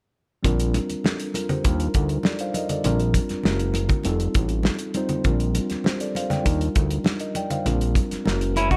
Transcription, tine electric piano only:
0.43 G3 C4 D4 F4 A#4
1.05 D4 A4
1.35 F4 A#4
1.50 G4 C5
1.64 G3 D4 D#4 F4 A#4
2.25 A4 D5
2.41 C5 F5
2.56 A#4 D#5
2.71 A4 D5
2.84 G3 C4 D4 F4 A#4
3.44 G#3 C#4 E4 F#4 A#4
4.04 G3 C4 D#4 F4 A4
4.95 G3 C4 D#4 F4 C5
5.25 G3 C4 D4 F4 A#4
5.85 G4 C5
6.01 A4 D5
6.17 C5 F5
6.30 D5 G5
6.44 G3 D4 D#4 F4 A#4
7.21 A#4 D#5
7.36 D5 G5
7.51 C5 F5
7.64 G3 C4 D4 F4 A#4
8.24 G#3 C#4 E4 F#4 A#4

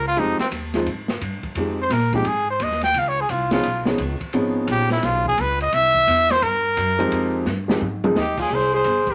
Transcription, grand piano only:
0.17 F3 G#3 C4 D#4 G4
0.75 F3 G#3 C4 D#4 F4
1.57 F3 G#3 C4 D#4 G4
2.14 F3 G#3 C4 D#4 G4
3.51 F3 B3 C#4 D#4 G#4
3.86 F3 B3 C#4 D#4 G#4
4.34 F3 B3 C#4 D#4 G#4
6.99 F3 G#3 C4 D#4 G4
7.68 F3 G#3 C4 D#4 G4
8.04 F3 G#3 C4 D#4 G#4

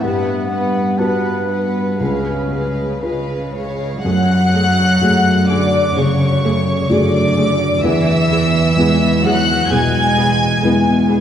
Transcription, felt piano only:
0.04 G2
1.00 F#4 B4
2.00 C#2
3.03 F4 B4
4.05 F#2
5.01 A3 F#4 G#4
5.96 C#3
6.90 A3 F#4 G#4
7.84 E2
8.77 G#3 B3 E4
9.72 B2
10.64 G#3 B3 E4

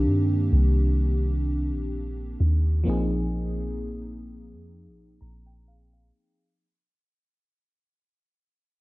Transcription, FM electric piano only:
Already playing: D#3 A#3 C4 D4 G4
2.84 F3 A#3 C4
2.88 D#4 G#4
5.21 A#5
5.46 G5
5.68 F5
5.93 F5

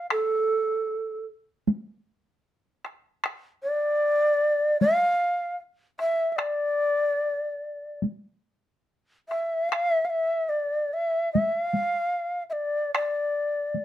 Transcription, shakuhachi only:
0.11 A4
3.63 D5
4.81 F5
6.00 E5
6.32 E5
6.37 D5
9.29 E5
9.70 F5
9.91 E5
10.05 F5
10.10 E5
10.49 D5
10.93 E5
11.33 E5
11.59 F5
12.50 D5 E5
12.95 D5

